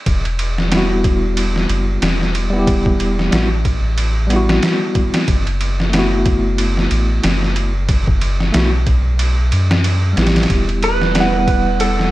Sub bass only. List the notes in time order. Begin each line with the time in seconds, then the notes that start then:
0.06 E1
1.69 F#1
2.02 E1
3.33 A1
5.28 F#1
6.91 A1
7.24 F#1
8.54 B1
9.52 F#2
10.17 A1
10.50 E1